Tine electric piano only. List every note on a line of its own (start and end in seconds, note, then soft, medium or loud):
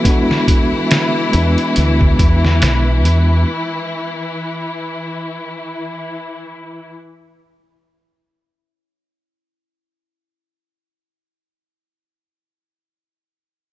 0.03 1.28 G#3 medium
0.03 1.29 B3 medium
0.07 1.30 D4 medium
0.07 1.31 F#4 medium
1.31 3.42 G#3 medium
1.31 3.43 B3 medium
1.35 3.44 D4 medium
1.35 3.45 B4 medium